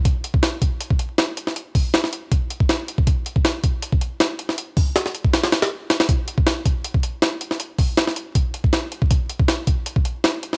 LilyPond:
\new DrumStaff \with { instrumentName = "Drums" } \drummode { \time 4/4 \tempo 4 = 159 <hh bd>8 hh16 bd16 <hh sn>8 <hh bd>8 hh16 bd16 hh8 <hh sn>8 hh16 sn16 | hh8 <hho bd>8 <hh sn>16 sn16 hh8 <hh bd>8 hh16 bd16 <hh sn>8 hh16 bd16 | <hh bd>8 hh16 bd16 <hh sn>8 <hh bd>8 hh16 bd16 hh8 <hh sn>8 hh16 sn16 | hh8 <hho bd>8 <hh sn>16 sn16 hh16 bd16 <hh sn>16 <hh sn>16 <hh sn>16 <hh sn>16 r8 <hh sn>16 <hh sn>16 |
<hh bd>8 hh16 bd16 <hh sn>8 <hh bd>8 hh16 bd16 hh8 <hh sn>8 hh16 sn16 | hh8 <hho bd>8 <hh sn>16 sn16 hh8 <hh bd>8 hh16 bd16 <hh sn>8 hh16 bd16 | <hh bd>8 hh16 bd16 <hh sn>8 <hh bd>8 hh16 bd16 hh8 <hh sn>8 hh16 sn16 | }